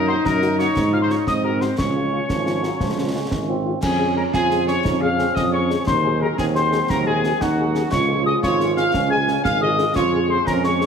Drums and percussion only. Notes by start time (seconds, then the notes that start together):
0.25 concert bass drum, snare
0.42 snare
0.59 snare
0.76 concert bass drum, snare
1.10 snare
1.27 concert bass drum, snare
1.61 snare
1.78 concert bass drum, snare, crash
2.29 concert bass drum, snare
2.47 snare
2.64 snare
2.80 concert bass drum, snare
3.31 concert bass drum, snare
3.83 concert bass drum, snare, crash
4.34 concert bass drum, snare
4.51 snare
4.68 snare
4.85 concert bass drum, snare
5.19 snare
5.36 concert bass drum, snare
5.71 snare
5.87 concert bass drum, snare
6.38 concert bass drum, snare
6.55 snare
6.72 snare
6.90 concert bass drum, snare
7.24 snare
7.41 concert bass drum, snare
7.75 snare
7.92 concert bass drum, snare, crash
8.43 concert bass drum, snare
8.60 snare
8.77 snare
8.94 concert bass drum, snare
9.28 snare
9.45 concert bass drum, snare
9.78 snare
9.96 concert bass drum, snare
10.47 concert bass drum, snare
10.64 snare
10.81 snare